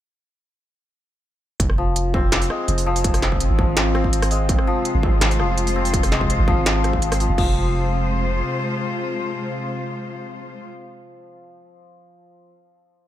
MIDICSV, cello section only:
0, 0, Header, 1, 2, 480
1, 0, Start_track
1, 0, Key_signature, -4, "minor"
1, 0, Tempo, 361446
1, 2125, Time_signature, 4, 2, 24, 8
1, 17368, End_track
2, 0, Start_track
2, 0, Title_t, "Cello section"
2, 0, Program_c, 0, 48
2, 5964, Note_on_c, 0, 65, 75
2, 5964, Note_on_c, 0, 72, 91
2, 5965, Note_on_c, 0, 48, 81
2, 5965, Note_on_c, 0, 56, 73
2, 9766, Note_off_c, 0, 48, 0
2, 9766, Note_off_c, 0, 56, 0
2, 9766, Note_off_c, 0, 65, 0
2, 9766, Note_off_c, 0, 72, 0
2, 9805, Note_on_c, 0, 56, 72
2, 9806, Note_on_c, 0, 48, 81
2, 9806, Note_on_c, 0, 65, 75
2, 9806, Note_on_c, 0, 72, 91
2, 14127, Note_off_c, 0, 56, 0
2, 14128, Note_off_c, 0, 48, 0
2, 14128, Note_off_c, 0, 65, 0
2, 14128, Note_off_c, 0, 72, 0
2, 17368, End_track
0, 0, End_of_file